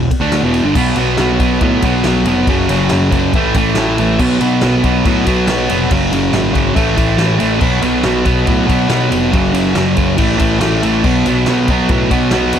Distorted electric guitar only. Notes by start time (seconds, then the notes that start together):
0.21 D3 A3 D4
0.43 E2 B2 E3
0.65 G2 D3
0.76 B2 F#3 B3
0.97 B2 F#3 B3
1.19 B2 F#3 B3
1.40 B2 F#3 B3
1.62 B2 F#3 B3
1.85 B2 F#3 B3
2.05 B2 F#3 B3
2.27 B2 F#3 B3
2.49 F#2 C#3 F#3
2.69 F#2 C#3 F#3
2.91 F#2 C#3 F#3
3.11 F#2 C#3 F#3
3.34 A2 E3 A3
3.56 A2 E3 A3
3.78 A2 E3 A3
4.00 A2 E3 A3
4.20 B2 F#3 B3
4.40 B2 F#3 B3
4.63 B2 F#3 B3
4.84 B2 F#3 B3
5.06 B2 F#3 B3
5.26 B2 F#3 B3
5.48 B2 F#3 B3
5.70 B2 F#3 B3
5.90 F#2 C#3 F#3
6.12 F#2 C#3 F#3
6.33 F#2 C#3 F#3
6.53 F#2 C#3 F#3
6.75 A2 E3 A3
6.97 A2 E3 A3
7.18 A2 E3 A3
7.39 A2 E3 A3
7.60 B2 F#3 B3
7.82 B2 F#3 B3
8.04 B2 F#3 B3
8.25 B2 F#3 B3
8.46 B2 F#3 B3
8.67 B2 F#3 B3
8.88 B2 F#3 B3
9.10 B2 F#3 B3
9.32 F#2 C#3 F#3
9.53 F#2 C#3 F#3
9.75 F#2 C#3 F#3
9.96 F#2 C#3 F#3
10.17 A2 E3 A3
10.38 A2 E3 A3
10.59 A2 E3 A3
10.83 A2 E3 A3
11.05 B2 F#3 B3
11.27 B2 F#3 B3
11.47 B2 F#3 B3
11.70 B2 F#3 B3
11.90 B2 F#3 B3
12.11 B2 F#3 B3
12.32 B2 F#3 B3
12.54 B2 F#3 B3